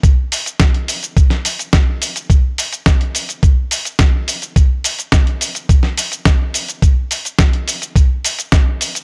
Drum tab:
HH |x-oxxxoxxxoxx-ox|x-oxxxoxx-oxx-ox|x-oxxxoxx-oxx-ox|x-oxxxoxx-oxx-ox|
SH |x-xxx-xxx-xxx-xx|x-xxx-xxx-xxx-xx|x-xxx-xxx-xxx-xx|x-xxx-xxx-xxx-xx|
SD |----o----o--o---|----o-------o---|----o----o--o---|----o-------o---|
BD |o---o---o---o---|o---o---o---o---|o---o---o---o---|o---o---o---o---|